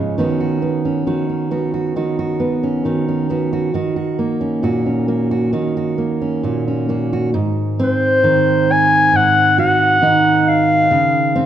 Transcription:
0.00 0.13 G#2 soft
0.00 0.19 C#3 soft
0.00 0.13 F3 soft
0.00 0.18 G#3 soft
0.00 0.19 C#4 soft
0.00 0.18 F4 soft
0.18 1.06 D#3 medium
0.18 0.61 B3 soft
0.18 0.85 C#4 soft
0.18 0.40 F#4 soft
0.40 1.07 F#4 soft
0.62 1.50 B3 soft
0.85 1.29 C#4 soft
1.07 1.96 D#3 soft
1.07 1.51 F#4 soft
1.29 2.62 C#4 soft
1.51 2.39 B3 soft
1.51 1.73 F#4 soft
1.74 1.96 F#4 soft
1.96 2.84 D#3 medium
1.96 2.18 F#4 soft
2.19 2.85 F#4 soft
2.40 3.29 B3 soft
2.63 3.07 C#4 soft
2.85 3.73 D#3 soft
2.85 3.30 F#4 soft
3.08 3.70 C#4 soft
3.30 3.69 B3 soft
3.30 3.52 F#4 soft
3.53 3.75 F#4 soft
3.74 5.52 D#3 medium
3.74 3.95 F#4 soft
3.96 4.63 F#4 soft
4.19 5.07 A#3 soft
4.41 4.85 C#4 soft
4.63 5.53 A#2 soft
4.63 5.07 F#4 soft
4.86 6.20 C#4 soft
5.08 5.97 A#3 soft
5.08 5.30 F#4 soft
5.31 5.52 F#4 soft
5.53 8.22 D#3 soft
5.53 5.76 F#4 soft
5.77 6.43 F#4 soft
5.98 6.88 A#3 soft
6.22 6.66 C#4 soft
6.43 7.34 A#2 soft
6.43 6.89 F#4 soft
6.68 7.29 C#4 soft
6.89 7.29 A#3 soft
6.89 7.12 F#4 soft
7.13 7.29 F#4 soft
7.34 9.11 G#2 medium
7.79 10.86 C4 soft
7.79 8.73 C5 medium
8.24 10.01 D#3 medium
8.72 9.18 G#5 loud
9.12 10.86 G#2 medium
9.16 9.59 F#5 medium
9.58 10.86 F#4 medium
9.58 10.50 F#5 medium
10.02 11.46 D#3 medium
10.02 10.86 D#4 medium
10.48 11.46 F5 medium
10.91 11.46 C#3 medium
11.35 11.46 C4 medium

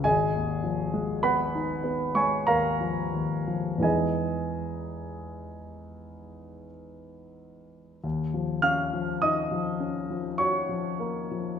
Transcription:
0.04 3.79 G#1 soft
0.04 1.20 G#4 medium
0.04 1.20 D#5 medium
0.04 1.24 G#5 medium
0.35 0.83 D#2 soft
0.64 1.12 F3 soft
0.94 1.42 G#3 soft
1.23 1.73 B3 soft
1.23 2.12 B4 medium
1.23 2.13 F#5 medium
1.23 2.16 B5 medium
1.55 2.04 D#4 soft
1.84 2.35 B3 soft
2.15 2.68 G#3 soft
2.15 2.46 C#5 medium
2.15 2.47 G#5 medium
2.15 2.48 C#6 medium
2.47 3.01 D#2 soft
2.47 3.79 A#4 medium
2.47 3.79 F5 medium
2.47 3.83 A#5 medium
2.81 3.35 F3 soft
3.14 3.69 D#2 soft
3.48 3.83 F3 soft
3.78 7.97 E2 soft
3.78 7.98 E3 soft
3.78 7.99 G#3 soft
3.78 7.99 B3 soft
3.82 7.99 D#4 soft
3.82 6.66 G#4 soft
3.82 6.66 D#5 soft
3.82 6.69 G#5 medium
8.04 11.60 D#2 soft
8.34 8.81 F3 soft
8.62 9.11 C#4 soft
8.62 9.19 F5 medium
8.62 9.22 F6 medium
8.93 9.40 F3 soft
9.22 9.52 D#3 soft
9.22 10.35 D#5 medium
9.22 10.39 D#6 medium
9.51 9.98 F3 soft
9.80 10.27 C#4 soft
10.10 10.57 F3 soft
10.38 10.88 F#4 soft
10.38 11.60 C#5 medium
10.38 11.60 C#6 medium
10.69 11.20 F3 soft
11.00 11.51 A#3 soft
11.31 11.60 F3 soft

